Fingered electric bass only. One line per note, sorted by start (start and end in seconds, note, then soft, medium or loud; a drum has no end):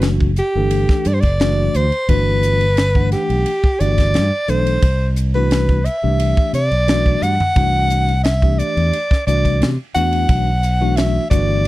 0.00 0.40 F#1 medium
0.55 0.85 G1 medium
1.06 1.22 G2 medium
1.23 1.68 F#1 medium
1.75 1.90 D2 medium
2.09 3.14 G1 medium
3.30 3.44 B1 medium
3.64 muted fingered electric bass stroke soft
3.81 4.16 G1 medium
4.15 4.30 G2 medium
4.48 4.78 B1 medium
4.82 5.87 C2 medium
6.04 6.33 C2 medium
6.53 6.69 C3 medium
6.71 7.15 B1 medium
7.22 7.37 G2 medium
7.56 8.61 C2 medium
8.77 8.91 E2 medium
9.11 muted fingered electric bass stroke soft
9.27 9.62 C2 medium
9.61 9.76 C3 medium
9.96 10.25 E2 medium
10.29 11.18 B1 medium
11.31 11.68 G1 medium